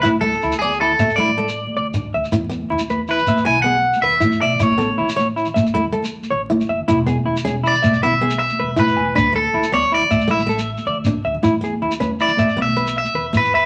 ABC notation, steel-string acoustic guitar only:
X:1
M:12/8
L:1/8
Q:3/8=105
K:Emix
V:1 name="Steel-string acoustic guitar"
E A,2 B,2 z A, A,2 z D2 | E B,2 z4 B,2 z E2 | E B,2 C2 z A, A,2 z E2 | E B,2 C2 z B, B,2 z E2 |
D A,2 B,2 z A, A,2 z D2 | E B,2 C2 z B, B,2 z E2 |]